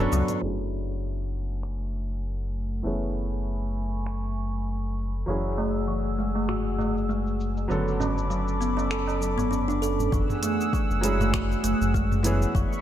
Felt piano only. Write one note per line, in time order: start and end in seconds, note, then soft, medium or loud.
0.00 0.44 D3 medium
0.00 0.41 F#3 loud
0.00 0.45 B3 loud
0.00 0.43 C#4 loud
0.00 0.25 D4 loud
0.00 0.25 A4 loud
0.00 0.45 C#5 medium
0.00 0.44 G#5 medium
0.41 2.81 F#3 medium
0.41 2.81 A3 medium
0.41 2.82 C#4 medium
0.41 2.82 E4 medium
0.41 2.83 G#4 medium
2.83 5.23 E3 medium
2.83 5.24 A3 medium
2.83 5.24 B3 medium
2.83 5.25 C#4 medium
2.87 5.25 G#4 medium
5.26 7.66 F#3 medium
5.26 7.67 C#4 medium
5.26 7.67 E4 medium
5.26 7.68 G#4 medium
7.68 10.09 D3 medium
7.68 10.08 F#3 medium
7.68 10.08 B3 medium
7.68 10.09 C#4 medium
7.68 10.10 A4 medium
11.01 12.20 F#3 medium
11.01 12.21 C#4 medium
11.01 12.22 E4 medium
11.01 12.22 G#4 medium
12.23 12.81 E3 loud
12.23 12.81 B3 medium
12.23 12.81 C#4 medium
12.23 12.81 G#4 loud